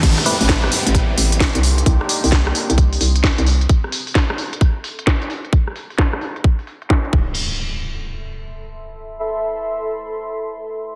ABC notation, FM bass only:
X:1
M:4/4
L:1/16
Q:"Swing 16ths" 1/4=131
K:Am
V:1 name="FM bass" clef=bass
A,,, z2 A,,,3 z A,,,3 A,,,3 C,,3 | C,, z2 C,,3 z C,,3 C,,3 C,,3 | z16 | z16 |
z16 | z16 |]